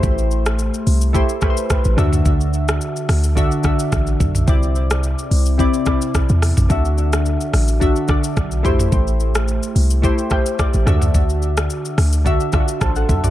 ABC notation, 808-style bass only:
X:1
M:4/4
L:1/16
Q:"Swing 16ths" 1/4=108
K:Dmix
V:1 name="808-style bass" clef=bass
A,,,4- A,,, z C,,3 z4 A,,, D,,2- | D,,4- D,, z D,,3 z3 A,,,2 B,,,2 | C,,4- C,, z C,,3 z4 E,,2 A,,, | D,,4- D,, z A,,,3 z3 B,,,2 A,,,2 |
A,,,4- A,,, z C,,3 z4 A,,, D,,2- | D,,4- D,, z D,,3 z3 A,,,2 B,,,2 |]